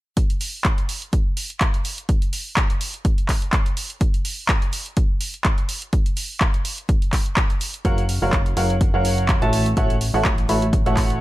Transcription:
0.17 kick loud
0.17 closed hi-hat medium
0.30 closed hi-hat soft
0.41 open hi-hat loud
0.65 kick loud
0.65 clap loud
0.65 closed hi-hat medium
0.78 closed hi-hat soft
0.89 open hi-hat loud
1.02 closed hi-hat soft
1.13 kick loud
1.13 closed hi-hat medium
1.37 open hi-hat loud
1.50 closed hi-hat soft
1.61 kick loud
1.61 clap loud
1.61 closed hi-hat medium
1.74 closed hi-hat soft
1.85 open hi-hat medium
1.98 closed hi-hat medium
2.09 kick loud
2.09 closed hi-hat medium
2.22 closed hi-hat soft
2.33 open hi-hat loud
2.57 kick loud
2.57 clap loud
2.57 closed hi-hat medium
2.70 closed hi-hat soft
2.81 open hi-hat loud
2.94 closed hi-hat soft
3.05 kick loud
3.05 closed hi-hat medium
3.18 closed hi-hat soft
3.29 kick medium
3.29 clap medium
3.29 open hi-hat loud
3.42 closed hi-hat soft
3.53 kick loud
3.53 clap loud
3.53 closed hi-hat medium
3.66 closed hi-hat soft
3.77 open hi-hat loud
3.90 closed hi-hat soft
4.01 kick loud
4.01 closed hi-hat medium
4.14 closed hi-hat soft
4.25 open hi-hat loud
4.49 kick loud
4.49 clap loud
4.49 closed hi-hat medium
4.62 closed hi-hat soft
4.73 open hi-hat loud
4.86 closed hi-hat soft
4.97 kick loud
4.97 closed hi-hat medium
5.21 open hi-hat loud
5.34 closed hi-hat soft
5.45 kick loud
5.45 clap loud
5.45 closed hi-hat medium
5.58 closed hi-hat soft
5.69 open hi-hat loud
5.82 closed hi-hat soft
5.93 kick loud
5.93 closed hi-hat medium
6.06 closed hi-hat soft
6.17 open hi-hat loud
6.41 kick loud
6.41 clap loud
6.41 closed hi-hat medium
6.54 closed hi-hat soft
6.65 open hi-hat loud
6.78 closed hi-hat soft
6.89 kick loud
6.89 closed hi-hat medium
7.02 closed hi-hat soft
7.13 kick medium
7.13 clap medium
7.13 open hi-hat loud
7.26 closed hi-hat soft
7.37 kick loud
7.37 clap loud
7.37 closed hi-hat medium
7.50 closed hi-hat soft
7.61 open hi-hat loud
7.74 closed hi-hat soft
7.85 8.19 F#1 medium
7.85 8.00 F#3 medium
7.85 8.00 F#4 medium
7.85 8.00 A#4 medium
7.85 8.00 C#5 medium
7.85 8.00 F5 medium
7.85 8.00 F#5 loud
7.85 kick loud
7.85 closed hi-hat medium
7.98 closed hi-hat soft
8.09 open hi-hat loud
8.22 8.55 F#1 medium
8.22 8.36 F#3 medium
8.22 8.36 F#4 medium
8.22 8.36 A#4 medium
8.22 8.36 C#5 medium
8.22 8.36 F5 medium
8.22 8.36 F#5 medium
8.33 kick loud
8.33 clap loud
8.33 closed hi-hat medium
8.46 closed hi-hat soft
8.57 8.91 F#1 medium
8.57 8.72 F#3 medium
8.57 8.72 F#4 medium
8.57 8.72 A#4 medium
8.57 8.72 C#5 medium
8.57 8.72 F5 medium
8.57 8.72 F#5 medium
8.57 open hi-hat loud
8.70 closed hi-hat soft
8.81 kick loud
8.81 closed hi-hat medium
8.94 9.39 F#1 medium
8.94 9.39 F#3 medium
8.94 9.39 F#4 medium
8.94 9.39 A#4 medium
8.94 9.39 C#5 medium
8.94 9.39 F5 medium
8.94 9.39 F#5 medium
9.05 open hi-hat loud
9.18 closed hi-hat soft
9.29 kick loud
9.29 clap loud
9.29 closed hi-hat medium
9.42 9.75 A1 medium
9.42 9.65 A3 medium
9.42 9.65 F#4 medium
9.42 9.65 A4 medium
9.42 9.65 C#5 medium
9.42 9.65 E5 medium
9.42 9.65 A5 loud
9.42 closed hi-hat soft
9.53 open hi-hat loud
9.66 closed hi-hat soft
9.77 10.11 A1 medium
9.77 9.92 A3 medium
9.77 9.92 F#4 medium
9.77 9.92 A4 medium
9.77 9.92 C#5 medium
9.77 9.92 E5 medium
9.77 9.92 F#5 loud
9.77 kick loud
9.77 closed hi-hat medium
9.90 closed hi-hat soft
10.01 open hi-hat loud
10.14 10.47 A1 loud
10.14 10.28 A3 medium
10.14 10.28 F#4 medium
10.14 10.28 A4 medium
10.14 10.28 C#5 medium
10.14 10.28 E5 medium
10.14 10.28 F#5 medium
10.25 kick loud
10.25 clap loud
10.25 closed hi-hat medium
10.38 closed hi-hat soft
10.49 10.83 A1 medium
10.49 10.64 A3 medium
10.49 10.65 F#4 medium
10.49 10.65 A4 medium
10.49 10.65 C#5 medium
10.49 10.65 E5 medium
10.49 10.65 B5 medium
10.49 open hi-hat medium
10.62 closed hi-hat soft
10.73 kick loud
10.73 closed hi-hat medium
10.86 11.21 A1 loud
10.86 11.21 A3 medium
10.86 11.21 F#4 medium
10.86 11.21 A4 medium
10.86 11.21 C#5 medium
10.86 11.21 E5 medium
10.86 11.21 F#5 medium
10.86 closed hi-hat soft
10.97 kick medium
10.97 clap medium
10.97 open hi-hat loud
11.10 closed hi-hat soft

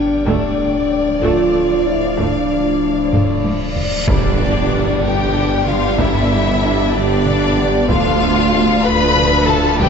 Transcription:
0.00 0.28 G1 medium
0.00 0.27 B3 medium
0.00 0.23 D4 medium
0.00 0.25 D4 medium
0.00 0.27 G4 medium
0.00 0.23 D5 medium
0.00 1.18 G5 medium
0.26 4.07 D1 medium
0.26 0.34 D2 medium
0.26 0.35 D2 medium
0.26 4.08 F3 medium
0.26 0.56 A3 medium
0.26 4.08 A3 medium
0.26 1.20 D4 medium
0.26 4.04 D4 medium
0.26 3.84 D5 medium
0.26 4.04 D5 medium
0.26 taiko medium
1.21 1.30 D2 medium
1.21 1.51 A3 medium
1.21 1.84 F4 medium
1.21 3.88 F5 medium
1.21 taiko medium
1.54 1.62 D2 soft
1.54 1.62 D2 medium
1.54 1.62 A3 medium
1.86 2.17 E4 medium
2.17 2.25 D2 medium
2.17 2.47 A3 medium
2.17 3.73 D4 medium
2.17 taiko medium
2.17 reverse cymbal medium
3.12 3.20 D2 medium
3.12 3.21 D2 medium
3.12 3.42 A3 medium
3.12 taiko low-mid medium
3.44 3.52 D2 soft
3.44 3.52 A3 soft
3.44 taiko high medium
3.76 taiko low medium
4.07 7.90 G1 medium
4.07 4.92 G1 medium
4.07 4.92 G2 medium
4.07 4.37 G3 medium
4.07 7.85 B3 medium
4.07 4.37 D4 medium
4.07 7.85 D4 medium
4.07 4.99 D4 medium
4.07 7.85 G4 medium
4.07 7.85 D5 medium
4.07 4.99 D5 medium
4.07 taiko medium
4.07 impact medium
4.39 4.71 B3 medium
4.39 4.71 G4 medium
4.71 5.03 G3 medium
4.71 4.82 B3 medium
4.71 5.03 D4 medium
4.71 4.82 D4 medium
5.02 5.87 G1 medium
5.02 5.87 G2 medium
5.02 5.34 B3 medium
5.02 5.34 G4 medium
5.02 5.67 G4 medium
5.02 5.65 G5 medium
5.34 5.64 G3 medium
5.34 5.64 D4 medium
5.34 taiko mid medium
5.66 5.98 B3 medium
5.66 5.78 B3 medium
5.66 5.78 D4 medium
5.66 5.98 F4 medium
5.66 5.98 G4 medium
5.66 5.99 F5 medium
5.66 taiko mid medium
5.98 6.82 G1 medium
5.98 6.83 G1 medium
5.98 6.82 G2 medium
5.98 6.30 G3 medium
5.98 6.30 D4 medium
5.98 6.92 E4 medium
5.98 6.94 E5 medium
5.98 taiko medium
6.30 6.62 B3 medium
6.30 6.62 G4 medium
6.62 6.91 G3 medium
6.62 6.73 B3 medium
6.62 6.91 D4 medium
6.62 6.73 D4 medium
6.94 7.78 G1 medium
6.94 7.78 G2 medium
6.94 7.25 B3 medium
6.94 7.89 D4 medium
6.94 7.25 G4 medium
6.94 7.89 D5 loud
7.25 7.57 G3 medium
7.25 7.57 D4 medium
7.25 taiko mid medium
7.57 7.89 B3 medium
7.57 7.68 B3 medium
7.57 7.68 D4 medium
7.57 7.89 G4 medium
7.57 taiko mid medium
7.88 9.89 D1 medium
7.88 8.73 D2 medium
7.88 8.19 F3 medium
7.88 9.89 A3 medium
7.88 9.89 D4 medium
7.88 8.18 D4 medium
7.88 8.82 F4 loud
7.88 9.89 A4 medium
7.88 9.89 D5 medium
7.88 8.82 F5 loud
7.88 taiko medium
8.21 8.53 A3 medium
8.21 8.52 F4 medium
8.51 8.84 F3 medium
8.51 8.63 A3 medium
8.51 8.63 D4 medium
8.51 8.84 D4 medium
8.84 9.68 D2 medium
8.84 9.16 A3 medium
8.84 9.16 F4 medium
8.84 9.47 B4 loud
8.84 9.48 B5 loud
9.15 9.45 F3 medium
9.15 9.45 D4 medium
9.15 taiko mid medium
9.47 9.79 A3 medium
9.47 9.59 A3 medium
9.47 9.59 D4 medium
9.47 9.79 F4 medium
9.47 9.79 A4 loud
9.47 9.79 A5 loud
9.47 taiko mid medium
9.79 9.89 D2 loud
9.79 9.89 F3 medium
9.79 9.89 D4 medium
9.79 9.89 G4 loud
9.79 9.89 G5 loud
9.79 taiko loud

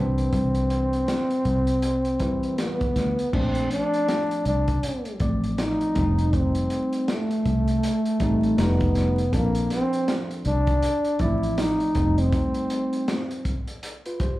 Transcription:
0.00 0.29 C2 medium
0.00 1.23 E3 medium
0.00 1.20 G3 medium
0.00 2.59 C4 loud
0.00 1.21 D4 medium
0.00 1.20 B4 medium
0.18 closed hi-hat medium
0.33 1.04 C2 loud
0.33 kick loud
0.33 closed hi-hat medium
0.55 closed hi-hat medium
0.70 closed hi-hat medium
0.93 closed hi-hat soft
1.08 snare loud
1.08 closed hi-hat medium
1.30 closed hi-hat medium
1.45 2.39 C2 medium
1.45 kick medium
1.45 closed hi-hat medium
1.67 closed hi-hat medium
1.82 closed hi-hat loud
2.05 closed hi-hat soft
2.19 3.16 E3 medium
2.19 3.16 G3 medium
2.19 3.17 E4 medium
2.19 3.16 B4 medium
2.19 kick medium
2.19 closed hi-hat medium
2.43 closed hi-hat soft
2.58 3.36 B3 medium
2.58 snare medium
2.58 closed hi-hat loud
2.81 kick medium
2.81 closed hi-hat soft
2.96 3.16 D2 medium
2.96 snare soft
2.96 closed hi-hat medium
3.19 closed hi-hat medium
3.33 3.67 A#1 loud
3.33 4.57 F3 medium
3.33 4.58 A3 medium
3.33 4.58 C4 medium
3.33 3.71 C4 loud
3.33 4.58 D4 medium
3.33 kick loud
3.33 crash medium
3.55 closed hi-hat medium
3.71 4.42 D4 loud
3.71 closed hi-hat medium
3.94 closed hi-hat soft
4.08 snare loud
4.08 closed hi-hat medium
4.31 closed hi-hat medium
4.45 4.79 C2 medium
4.45 5.17 D4 medium
4.45 closed hi-hat medium
4.68 kick medium
4.68 closed hi-hat medium
4.83 closed hi-hat loud
5.05 closed hi-hat soft
5.20 5.76 A1 medium
5.20 5.95 F3 medium
5.20 5.94 A3 medium
5.20 5.94 C4 medium
5.20 5.96 D5 medium
5.20 kick medium
5.20 closed hi-hat medium
5.44 closed hi-hat soft
5.58 6.37 D#4 medium
5.58 snare loud
5.58 closed hi-hat loud
5.81 closed hi-hat soft
5.95 6.67 F1 medium
5.95 7.20 G3 medium
5.95 7.20 A3 medium
5.95 7.20 C4 medium
5.95 6.04 D4 medium
5.95 kick loud
5.95 closed hi-hat medium
6.02 7.24 D#4 medium
6.18 closed hi-hat medium
6.33 7.12 C4 loud
6.33 kick loud
6.33 closed hi-hat medium
6.55 closed hi-hat medium
6.70 closed hi-hat medium
6.93 closed hi-hat medium
7.08 8.62 A3 medium
7.08 snare loud
7.08 closed hi-hat medium
7.31 closed hi-hat medium
7.45 7.79 C2 medium
7.45 kick medium
7.45 closed hi-hat medium
7.68 closed hi-hat medium
7.83 closed hi-hat loud
8.05 closed hi-hat medium
8.20 8.54 A1 medium
8.20 8.56 G3 medium
8.20 8.57 A3 medium
8.20 8.58 C4 medium
8.20 8.57 D#4 medium
8.20 kick medium
8.20 closed hi-hat medium
8.43 closed hi-hat soft
8.57 9.29 F1 medium
8.57 9.22 C3 medium
8.57 9.22 G3 medium
8.57 9.22 A3 medium
8.57 9.34 B3 medium
8.57 9.22 D#4 medium
8.57 snare loud
8.57 closed hi-hat loud
8.80 kick loud
8.80 closed hi-hat soft
8.95 snare soft
8.95 closed hi-hat medium
9.18 closed hi-hat soft
9.32 9.67 A#1 medium
9.32 10.57 F3 medium
9.32 9.69 A#3 loud
9.32 10.58 C4 medium
9.32 10.58 D4 medium
9.32 10.58 A4 medium
9.32 kick loud
9.32 closed hi-hat medium
9.55 closed hi-hat medium
9.70 10.19 C4 loud
9.70 snare soft
9.70 closed hi-hat medium
9.93 closed hi-hat soft
10.08 snare loud
10.08 closed hi-hat medium
10.31 closed hi-hat medium
10.45 10.79 C2 loud
10.45 11.23 D4 loud
10.45 closed hi-hat medium
10.67 kick medium
10.67 closed hi-hat medium
10.82 closed hi-hat loud
11.05 closed hi-hat soft
11.19 11.76 A1 medium
11.19 11.95 F3 medium
11.19 11.95 A3 medium
11.19 11.95 C4 medium
11.19 11.61 E4 medium
11.19 11.96 D5 medium
11.19 kick loud
11.19 closed hi-hat medium
11.43 closed hi-hat soft
11.58 12.20 D#4 loud
11.58 snare loud
11.58 closed hi-hat loud
11.80 closed hi-hat soft
11.95 12.29 F1 medium
11.95 13.20 G3 medium
11.95 13.20 A3 medium
11.95 13.20 C4 medium
11.95 13.21 D#4 medium
11.95 kick loud
11.95 closed hi-hat medium
12.18 13.68 C4 loud
12.18 closed hi-hat medium
12.32 kick loud
12.32 closed hi-hat medium
12.54 closed hi-hat medium
12.70 closed hi-hat medium
12.93 closed hi-hat medium
13.08 snare loud
13.08 closed hi-hat medium
13.31 closed hi-hat medium
13.45 kick medium
13.45 closed hi-hat medium
13.67 closed hi-hat medium
13.83 closed hi-hat loud
14.06 14.20 F4 medium
14.06 14.20 B4 medium
14.06 closed hi-hat medium
14.20 14.40 G4 medium
14.20 14.40 C5 medium
14.20 kick medium
14.20 closed hi-hat medium

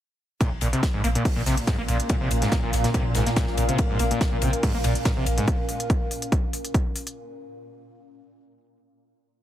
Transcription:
0.41 0.50 A#2 medium
0.41 5.52 A#2 medium
0.41 7.17 C#4 medium
0.41 kick loud
0.41 closed hi-hat medium
0.41 ride medium
0.52 0.61 A#1 medium
0.52 7.17 F5 medium
0.61 0.73 A#1 loud
0.61 0.68 A#2 medium
0.61 open hi-hat loud
0.61 ride medium
0.73 0.81 C3 medium
0.73 closed hi-hat medium
0.83 kick loud
0.83 snare loud
0.83 closed hi-hat medium
0.83 ride medium
0.94 1.03 A#1 medium
0.94 1.02 G#2 medium
0.94 7.17 A#4 medium
1.04 1.15 A#1 loud
1.04 1.08 A#3 medium
1.04 open hi-hat loud
1.04 ride medium
1.15 1.24 A#2 medium
1.15 closed hi-hat medium
1.25 kick loud
1.25 closed hi-hat medium
1.25 open hi-hat medium
1.36 1.46 A#1 medium
1.36 1.42 A#2 medium
1.46 1.57 A#1 loud
1.46 1.56 C3 medium
1.46 snare soft
1.46 open hi-hat loud
1.46 ride medium
1.57 closed hi-hat medium
1.67 1.77 G#2 medium
1.67 kick loud
1.67 snare loud
1.67 closed hi-hat medium
1.67 ride medium
1.78 1.88 A#1 medium
1.78 1.82 A#3 medium
1.88 2.00 A#1 loud
1.88 1.98 A#2 medium
1.88 open hi-hat loud
1.88 ride medium
2.00 closed hi-hat medium
2.09 2.16 A#2 medium
2.09 kick loud
2.09 closed hi-hat medium
2.09 ride medium
2.21 2.30 A#1 medium
2.21 2.29 C3 medium
2.31 2.42 A#1 loud
2.31 open hi-hat loud
2.31 ride medium
2.42 2.50 G#2 medium
2.42 snare soft
2.42 closed hi-hat medium
2.52 2.56 A#3 medium
2.52 kick loud
2.52 snare loud
2.52 closed hi-hat medium
2.52 ride medium
2.63 2.73 A#1 medium
2.63 2.71 A#2 medium
2.73 2.84 A#1 loud
2.73 snare soft
2.73 open hi-hat loud
2.73 ride medium
2.84 2.90 A#2 medium
2.84 snare medium
2.84 closed hi-hat medium
2.94 3.04 C3 medium
2.94 kick loud
2.94 closed hi-hat medium
2.94 ride medium
3.05 3.15 A#1 medium
3.15 3.26 A#1 loud
3.15 3.25 G#2 medium
3.15 snare medium
3.15 open hi-hat loud
3.15 ride medium
3.26 3.30 A#3 medium
3.26 snare medium
3.26 closed hi-hat medium
3.36 3.46 A#2 medium
3.36 kick loud
3.36 snare loud
3.36 closed hi-hat medium
3.36 ride medium
3.47 3.57 A#1 medium
3.47 snare soft
3.58 3.69 A#1 loud
3.58 3.64 A#2 medium
3.58 open hi-hat loud
3.58 ride medium
3.69 3.77 C3 medium
3.69 closed hi-hat medium
3.78 kick loud
3.78 closed hi-hat medium
3.78 ride medium
3.90 3.99 A#1 medium
3.90 3.98 G#2 medium
3.99 4.11 A#1 loud
3.99 4.04 A#3 medium
3.99 open hi-hat loud
3.99 ride medium
4.11 4.19 A#2 medium
4.11 closed hi-hat medium
4.21 kick loud
4.21 snare loud
4.21 closed hi-hat medium
4.21 ride medium
4.32 4.42 A#1 medium
4.32 4.38 A#2 medium
4.42 4.53 A#1 loud
4.42 4.51 C3 medium
4.42 open hi-hat loud
4.42 ride medium
4.53 closed hi-hat medium
4.63 4.72 G#2 medium
4.63 kick loud
4.63 closed hi-hat medium
4.63 open hi-hat medium
4.74 4.84 A#1 medium
4.74 4.78 A#3 medium
4.84 4.95 A#1 loud
4.84 4.94 A#2 medium
4.84 snare soft
4.84 open hi-hat loud
4.84 ride medium
4.95 closed hi-hat medium
5.05 5.12 A#2 medium
5.05 kick loud
5.05 snare loud
5.05 closed hi-hat medium
5.05 ride medium
5.17 5.26 A#1 medium
5.17 5.25 C3 medium
5.26 5.38 A#1 loud
5.26 open hi-hat loud
5.26 ride medium
5.38 5.46 G#2 medium
5.38 closed hi-hat medium
5.48 kick loud
5.48 closed hi-hat medium
5.69 open hi-hat loud
5.80 closed hi-hat medium
5.90 kick loud
5.90 closed hi-hat medium
6.11 open hi-hat loud
6.22 closed hi-hat medium
6.32 kick loud
6.32 closed hi-hat medium
6.53 open hi-hat loud
6.65 closed hi-hat medium
6.74 kick loud
6.74 closed hi-hat medium
6.96 open hi-hat loud
7.07 closed hi-hat medium

